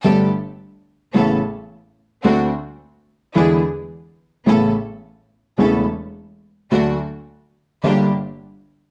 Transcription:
X:1
M:4/4
L:1/8
Q:1/4=107
K:D
V:1 name="String section"
[B,GA] z3 [B,CA] z3 | [=CDF] z3 [DE^G] z3 | [B,CA] z3 [B,CA] z3 | [A,DF] z3 [_B,DG] z3 |]
V:2 name="Upright piano" clef=bass
[G,,,G,,D,A,B,G] z3 [A,,,A,,C,A,B,E] z3 | [D,,D,A,=CF] z3 [E,,D,E,^G,B,E] z3 | [A,,,A,,C,A,B,E] z3 [E,,,E,,C,A,B,E] z3 | [D,,D,F,A,F] z3 [G,,,G,,D,G,_B,G] z3 |]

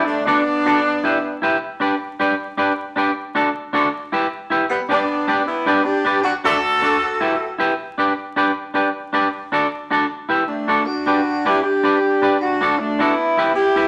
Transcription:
X:1
M:4/4
L:1/8
Q:"Swing" 1/4=156
K:G
V:1 name="Clean electric guitar"
z [DFAd] z [DFAd] z [EGBe] z [EGBe] | z [DGBd] z [DGBd] z [DGBd] z [DGBd] | z [DFAd] z [DFAd] z [EGBe] z [EGBe] | z [DGBd] z [DGBd] z [DGBd] z [DGBd] |
z [DFAd] z [DFAd] z [EGBe] z [EGBe] | z [DGBd] z [DGBd] z [DGBd] z [DGBd] | z [DFAd] z [DFAd] z [EGBe] z [DFAd] | z [DGBd] z [DGBd] z [DGBd] z [DGBd] |
z [DFAd] z [DFAd] z [EGBe] z [EGBe] |]
V:2 name="Horn section"
[A,D] [B,D]6 z | z8 | z8 | [G,B,] [B,D]3 [B,E] [B,D] [DG]2 |
[DF] [FA]6 z | z8 | z6 [A,D]2 | [DF]3 [EG] [DG]4 |
[DF]2 [A,D] [B,E]3 [EG]2 |]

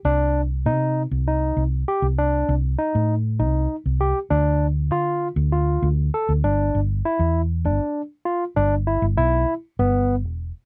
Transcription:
X:1
M:7/8
L:1/16
Q:1/4=99
K:Gmix
V:1 name="Tine electric piano"
D4 _E4 E4 G2 | D4 _E4 E4 G2 | D4 F4 F4 A2 | D4 E4 D4 F2 |
D2 E2 E4 B,4 z2 |]
V:2 name="Fingered electric bass" clef=bass
C,,4 C,3 C,,3 C,,2 z C,,- | C,,2 C,,2 z A,,3 C,,2 z C,,2 z | D,,4 D,3 D,,3 D,,2 z D,, | G,,,2 G,,,2 z E,,3 G,,, z4 z |
G,,,3 G,,, B,,,2 z2 G,,,3 E,,,2 z |]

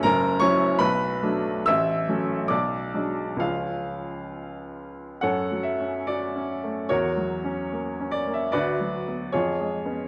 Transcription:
X:1
M:2/4
L:1/16
Q:1/4=73
K:C#phr
V:1 name="Upright piano"
[^A^a]2 [cc']2 [Bb]4 | [ee']4 [dd']4 | [^E^e]6 z2 | [Acf]2 e2 d4 |
[F^Ac]6 d e | [FBd]4 [^EGc]4 |]
V:2 name="Upright piano" clef=bass
[F,,,F,,]2 [F,CE]2 B,,,2 [F,A,D]2 | A,,,2 [F,A,C]2 B,,,2 [F,G,D]2 | [C,,^E,G,C]8 | (3F,,2 F,2 C2 (3F2 C2 A,2 |
(3E,,2 F,2 C2 (3^A,2 C2 A,2 | (3D,,2 F,2 B,2 (3^E,,2 G,2 [B,C]2 |]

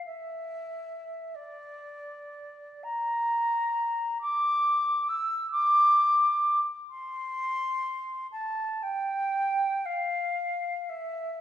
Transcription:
X:1
M:6/8
L:1/8
Q:3/8=43
K:F
V:1 name="Flute"
e3 d3 | b3 d'2 e' | d'2 z c'3 | a g2 f2 e |]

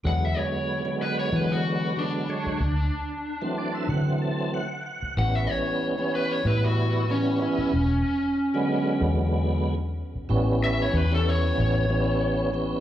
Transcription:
X:1
M:4/4
L:1/16
Q:"Swing 16ths" 1/4=94
K:Emix
V:1 name="Lead electric guitar"
f e c4 B c B F3 D4- | D8 z8 | f e c4 B c B F3 C4- | C8 z8 |
[K:Amix] z2 e c B A c8 z2 |]
V:2 name="Tonewheel organ"
z16 | z6 d e f2 a2 f2 f2 | z16 | z16 |
[K:Amix] z16 |]
V:3 name="Tonewheel organ" clef=bass
[D,F,G,B,]2 [D,F,G,B,]3 [D,F,G,B,]3 [D,F,G,B,]4 [D,F,G,B,]2 [D,F,G,c]2 | z4 z [E,F,A,=C]8 z3 | [E,=G,B,C]2 [E,G,B,C]3 [E,G,B,C]3 [E,G,B,E]4 [E,G,B,C]2 [E,G,B,E]2 | z4 z [D,F,G,B,]8 z3 |
[K:Amix] [E,G,B,C]4- [E,G,B,C] [E,G,B,C]4- [E,G,B,C] [E,G,B,C]4 [E,G,B,C]2 |]
V:4 name="Fingered electric bass" clef=bass
E,,2 z6 E,6- E, z | D,,2 z6 D,6- D, z | A,,,2 z6 A,,6- A,, z | E,,,2 z6 E,,6- E,, z |
[K:Amix] A,,,4 E,,4 A,,,8 |]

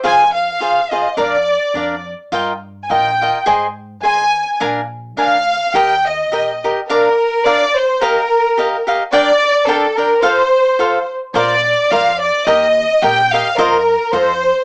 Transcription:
X:1
M:2/4
L:1/16
Q:"Swing" 1/4=106
K:Eb
V:1 name="Violin section"
a2 f4 e2 | d6 z2 | z3 z/2 a/2 g4 | z4 a4 |
z4 f4 | g2 e4 z2 | [K:Bb] B4 d2 c2 | B6 z2 |
d4 A2 B2 | c6 z2 | d4 f2 d2 | e4 g2 f2 |
B4 c4 |]
V:2 name="Cavaquinho"
[FAcf]2 z2 [FAcf]2 [FAcf]2 | [DBdf]2 z2 [DBdf]2 z2 | [FBeg]2 z2 [FBeg]2 [FBeg]2 | [Acea]2 z2 [Acea]2 z2 |
[DBfa]2 z2 [DBfa]2 z2 | [GBeg]2 z2 [GBeg]2 [GBeg]2 | [K:Bb] [DBdf]2 z2 [DBdf]2 z2 | [GBef]2 z2 [GBef]2 [GBef]2 |
[DBdg]2 z2 [DBdg]2 [DBdg]2 | [FAcf]2 z2 [FAcf]2 z2 | [FBcd]2 z2 [FBcd]2 z2 | [GBeg]2 z2 [GBeg]2 [GBeg]2 |
[FBce]2 z2 [FAce]2 z2 |]
V:3 name="Upright bass" clef=bass
F,,4 C,,4 | F,,4 F,,4 | G,,4 B,,,4 | A,,4 E,,4 |
B,,,4 D,,4 | E,,4 B,,,4 | [K:Bb] z8 | z8 |
z8 | z8 | B,,,4 F,,4 | E,,4 B,,,4 |
F,,4 F,,4 |]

